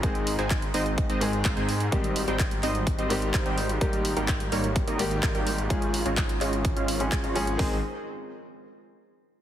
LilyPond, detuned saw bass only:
\new Staff \with { instrumentName = "Detuned saw bass" } { \clef bass \time 4/4 \key aes \major \tempo 4 = 127 aes,,8. aes,,8. aes,,8. aes,,8. aes,,16 aes,8. | aes,,8. aes,,8. aes,,8. aes,,8. aes,,16 aes,,8. | aes,,8. aes,,8. aes,,8. aes,,8. aes,,16 aes,,8. | aes,,8. aes,,8. aes,,8. aes,,8. aes,,16 aes,,8. |
aes,,8 r2. r8 | }